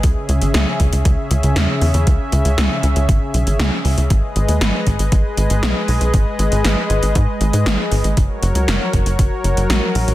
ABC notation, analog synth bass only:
X:1
M:4/4
L:1/16
Q:1/4=118
K:G#m
V:1 name="Analog synth bass" clef=bass
C,, z C,, G,,, C,, z C,, C,, C,, z C,, C,, E,, z E,, E,, | C,, z C,, C,, C,, z C,, C,, G,,, z B,,, G,,, C,, z C,, C,, | G,,, z G,,, D,, G,,, z G,,, G,,, G,,, z G,,, G,,, B,,, z B,,, B,,, | G,,, z G,,, G,,, G,,, z G,,, G,,, G,, z G,,, G,, G,,, z G,,, G,,, |
F,,, z F,,, C,, F,,, z F,,, F,,, F,,, z F,,, F,,, A,,, z A,,, A,,, |]